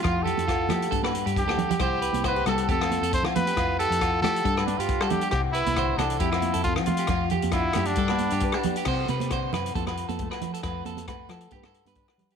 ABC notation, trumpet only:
X:1
M:4/4
L:1/16
Q:"Swing 16ths" 1/4=136
K:C
V:1 name="Trumpet"
F2 A8 z2 G4 | G4 B2 A2 A4 c2 B2- | B2 A4 A4 D F3 G2 | G2 E4 D2 E4 F2 F2- |
F2 z2 E3 D6- D z2 | z16 | z16 |]